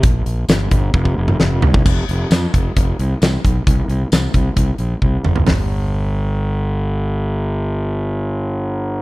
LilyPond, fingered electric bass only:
\new Staff \with { instrumentName = "Fingered electric bass" } { \clef bass \time 4/4 \key f \mixolydian \tempo 4 = 133 bes,,8 bes,,8 g,,8 g,,8 f,,8 f,,8 f,,8 c,8 | f,,8 f,,8 f,8 f,,8 f,,8 c,8 c,8 b,,8 | c,8 c,8 c,8 c,8 c,8 ais,,8 c,8 fis,,8 | g,,1~ |
g,,1 | }